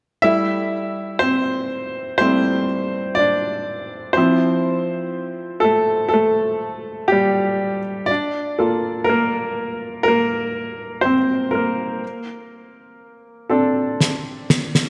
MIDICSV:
0, 0, Header, 1, 3, 480
1, 0, Start_track
1, 0, Tempo, 983607
1, 107, Time_signature, 4, 2, 24, 8
1, 7266, End_track
2, 0, Start_track
2, 0, Title_t, "Upright piano"
2, 0, Program_c, 0, 0
2, 108, Note_on_c, 0, 76, 81
2, 113, Note_on_c, 0, 55, 40
2, 116, Note_on_c, 0, 57, 35
2, 119, Note_on_c, 0, 64, 62
2, 201, Control_c, 0, 64, 127
2, 574, Note_off_c, 0, 64, 0
2, 582, Note_on_c, 0, 72, 78
2, 597, Note_on_c, 0, 60, 56
2, 602, Note_off_c, 0, 76, 0
2, 811, Note_off_c, 0, 55, 0
2, 812, Note_off_c, 0, 57, 0
2, 1053, Note_off_c, 0, 60, 0
2, 1055, Note_off_c, 0, 72, 0
2, 1063, Note_on_c, 0, 72, 81
2, 1074, Note_on_c, 0, 55, 41
2, 1076, Note_on_c, 0, 57, 35
2, 1078, Note_on_c, 0, 64, 40
2, 1080, Note_on_c, 0, 60, 63
2, 1291, Note_off_c, 0, 55, 0
2, 1292, Note_off_c, 0, 57, 0
2, 1293, Note_off_c, 0, 64, 0
2, 1534, Note_off_c, 0, 60, 0
2, 1537, Note_on_c, 0, 74, 77
2, 1558, Note_on_c, 0, 62, 54
2, 1560, Note_off_c, 0, 72, 0
2, 2013, Note_off_c, 0, 62, 0
2, 2016, Note_on_c, 0, 72, 67
2, 2033, Note_on_c, 0, 53, 42
2, 2034, Control_c, 0, 64, 0
2, 2035, Note_on_c, 0, 60, 57
2, 2037, Note_off_c, 0, 74, 0
2, 2038, Note_on_c, 0, 64, 47
2, 2118, Control_c, 0, 64, 127
2, 2732, Note_off_c, 0, 60, 0
2, 2734, Note_on_c, 0, 69, 70
2, 2755, Note_on_c, 0, 57, 57
2, 2763, Note_off_c, 0, 72, 0
2, 2962, Note_off_c, 0, 69, 0
2, 2970, Note_on_c, 0, 69, 66
2, 2975, Note_off_c, 0, 57, 0
2, 2994, Note_on_c, 0, 57, 56
2, 3451, Note_off_c, 0, 57, 0
2, 3454, Note_on_c, 0, 67, 67
2, 3473, Note_off_c, 0, 69, 0
2, 3475, Note_on_c, 0, 55, 50
2, 3801, Note_off_c, 0, 67, 0
2, 3812, Note_off_c, 0, 55, 0
2, 3931, Note_off_c, 0, 53, 0
2, 3933, Note_off_c, 0, 64, 0
2, 3934, Note_on_c, 0, 74, 69
2, 3954, Control_c, 0, 64, 0
2, 3958, Note_on_c, 0, 62, 56
2, 4043, Control_c, 0, 64, 127
2, 4189, Note_on_c, 0, 69, 43
2, 4191, Note_on_c, 0, 58, 38
2, 4195, Note_on_c, 0, 65, 43
2, 4413, Note_off_c, 0, 62, 0
2, 4413, Note_on_c, 0, 70, 68
2, 4430, Note_off_c, 0, 58, 0
2, 4436, Note_off_c, 0, 74, 0
2, 4438, Note_on_c, 0, 58, 58
2, 4889, Note_off_c, 0, 69, 0
2, 4889, Note_off_c, 0, 70, 0
2, 4892, Note_off_c, 0, 65, 0
2, 4893, Note_off_c, 0, 58, 0
2, 4896, Note_on_c, 0, 70, 75
2, 4919, Note_on_c, 0, 58, 57
2, 5374, Note_off_c, 0, 58, 0
2, 5375, Note_on_c, 0, 72, 61
2, 5394, Note_on_c, 0, 60, 49
2, 5396, Note_off_c, 0, 70, 0
2, 5430, Note_off_c, 0, 72, 0
2, 5447, Note_off_c, 0, 60, 0
2, 5617, Note_on_c, 0, 70, 54
2, 5637, Note_on_c, 0, 58, 49
2, 5873, Control_c, 0, 64, 0
2, 5957, Control_c, 0, 64, 127
2, 6586, Note_on_c, 0, 69, 46
2, 6589, Note_on_c, 0, 60, 42
2, 6593, Note_on_c, 0, 62, 50
2, 6906, Note_off_c, 0, 69, 0
2, 6908, Note_off_c, 0, 60, 0
2, 6909, Note_off_c, 0, 62, 0
2, 7043, Note_off_c, 0, 70, 0
2, 7053, Note_off_c, 0, 58, 0
2, 7266, End_track
3, 0, Start_track
3, 0, Title_t, "Drums"
3, 6834, Note_on_c, 9, 38, 39
3, 6883, Note_off_c, 9, 38, 0
3, 7076, Note_on_c, 9, 38, 58
3, 7125, Note_off_c, 9, 38, 0
3, 7198, Note_on_c, 9, 38, 49
3, 7247, Note_off_c, 9, 38, 0
3, 7266, End_track
0, 0, End_of_file